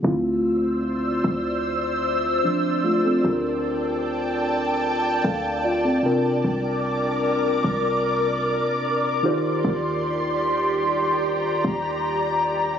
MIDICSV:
0, 0, Header, 1, 4, 480
1, 0, Start_track
1, 0, Tempo, 800000
1, 25, Time_signature, 4, 2, 24, 8
1, 7673, End_track
2, 0, Start_track
2, 0, Title_t, "Ambient pad"
2, 0, Program_c, 0, 92
2, 27, Note_on_c, 0, 88, 91
2, 28, Note_on_c, 0, 72, 82
2, 28, Note_on_c, 0, 74, 73
2, 1927, Note_off_c, 0, 72, 0
2, 1927, Note_off_c, 0, 88, 0
2, 1948, Note_on_c, 0, 79, 94
2, 1950, Note_on_c, 0, 81, 81
2, 3610, Note_off_c, 0, 79, 0
2, 3610, Note_off_c, 0, 81, 0
2, 3625, Note_on_c, 0, 70, 83
2, 3626, Note_on_c, 0, 86, 90
2, 5526, Note_off_c, 0, 70, 0
2, 5526, Note_off_c, 0, 86, 0
2, 5546, Note_on_c, 0, 67, 80
2, 5546, Note_on_c, 0, 84, 83
2, 6496, Note_off_c, 0, 84, 0
2, 6510, Note_on_c, 0, 82, 86
2, 7673, Note_off_c, 0, 67, 0
2, 7673, Note_off_c, 0, 74, 0
2, 7673, Note_off_c, 0, 82, 0
2, 7673, End_track
3, 0, Start_track
3, 0, Title_t, "Synth keys"
3, 0, Program_c, 1, 88
3, 0, Control_c, 1, 64, 127
3, 14, Note_on_c, 1, 50, 69
3, 21, Note_on_c, 1, 57, 63
3, 25, Note_on_c, 1, 60, 61
3, 30, Note_on_c, 1, 64, 61
3, 33, Control_c, 1, 64, 0
3, 34, Note_on_c, 1, 65, 77
3, 130, Control_c, 1, 64, 127
3, 1439, Note_off_c, 1, 57, 0
3, 1441, Note_off_c, 1, 60, 0
3, 1443, Note_off_c, 1, 64, 0
3, 1445, Note_off_c, 1, 65, 0
3, 1465, Note_on_c, 1, 62, 64
3, 1468, Note_on_c, 1, 53, 53
3, 1693, Note_off_c, 1, 62, 0
3, 1695, Note_off_c, 1, 53, 0
3, 1706, Note_on_c, 1, 65, 67
3, 1707, Note_on_c, 1, 57, 60
3, 1819, Note_off_c, 1, 65, 0
3, 1820, Note_off_c, 1, 57, 0
3, 1828, Note_on_c, 1, 69, 62
3, 1831, Note_on_c, 1, 60, 52
3, 1916, Note_off_c, 1, 50, 0
3, 1938, Note_on_c, 1, 50, 72
3, 1942, Note_on_c, 1, 62, 64
3, 1946, Note_on_c, 1, 65, 62
3, 1947, Note_off_c, 1, 69, 0
3, 1950, Note_on_c, 1, 67, 64
3, 1953, Control_c, 1, 64, 0
3, 1954, Note_on_c, 1, 69, 65
3, 1957, Note_on_c, 1, 70, 75
3, 2048, Control_c, 1, 64, 127
3, 2056, Note_off_c, 1, 60, 0
3, 3120, Note_off_c, 1, 62, 0
3, 3121, Note_off_c, 1, 65, 0
3, 3123, Note_off_c, 1, 67, 0
3, 3125, Note_off_c, 1, 69, 0
3, 3127, Note_off_c, 1, 70, 0
3, 3145, Note_on_c, 1, 77, 66
3, 3147, Note_on_c, 1, 69, 56
3, 3373, Note_off_c, 1, 77, 0
3, 3374, Note_off_c, 1, 69, 0
3, 3385, Note_on_c, 1, 74, 70
3, 3390, Note_on_c, 1, 65, 59
3, 3499, Note_off_c, 1, 74, 0
3, 3501, Note_off_c, 1, 65, 0
3, 3504, Note_on_c, 1, 69, 63
3, 3508, Note_on_c, 1, 60, 56
3, 3598, Note_off_c, 1, 50, 0
3, 3612, Note_off_c, 1, 60, 0
3, 3615, Note_on_c, 1, 48, 73
3, 3620, Note_on_c, 1, 60, 70
3, 3624, Note_on_c, 1, 62, 67
3, 3630, Note_on_c, 1, 65, 69
3, 3632, Control_c, 1, 64, 0
3, 3634, Note_on_c, 1, 70, 77
3, 3730, Control_c, 1, 64, 127
3, 3732, Note_off_c, 1, 69, 0
3, 5516, Note_off_c, 1, 48, 0
3, 5518, Note_off_c, 1, 60, 0
3, 5520, Note_off_c, 1, 62, 0
3, 5523, Note_off_c, 1, 65, 0
3, 5525, Note_off_c, 1, 70, 0
3, 5535, Note_on_c, 1, 51, 72
3, 5540, Note_on_c, 1, 63, 65
3, 5545, Note_on_c, 1, 65, 64
3, 5549, Note_on_c, 1, 67, 67
3, 5553, Control_c, 1, 64, 0
3, 5554, Note_on_c, 1, 72, 80
3, 5672, Control_c, 1, 64, 127
3, 7436, Note_off_c, 1, 51, 0
3, 7438, Note_off_c, 1, 63, 0
3, 7441, Note_off_c, 1, 65, 0
3, 7443, Note_off_c, 1, 67, 0
3, 7446, Note_off_c, 1, 72, 0
3, 7673, End_track
4, 0, Start_track
4, 0, Title_t, "808-style bass"
4, 0, Program_c, 2, 38
4, 27, Note_on_c, 2, 38, 107
4, 722, Note_off_c, 2, 38, 0
4, 746, Note_on_c, 2, 38, 104
4, 1441, Note_off_c, 2, 38, 0
4, 1947, Note_on_c, 2, 38, 108
4, 3122, Note_off_c, 2, 38, 0
4, 3147, Note_on_c, 2, 38, 102
4, 3607, Note_off_c, 2, 38, 0
4, 3867, Note_on_c, 2, 36, 105
4, 4562, Note_off_c, 2, 36, 0
4, 4586, Note_on_c, 2, 36, 102
4, 5161, Note_off_c, 2, 36, 0
4, 5787, Note_on_c, 2, 39, 113
4, 6962, Note_off_c, 2, 39, 0
4, 6987, Note_on_c, 2, 39, 99
4, 7673, Note_off_c, 2, 39, 0
4, 7673, End_track
0, 0, End_of_file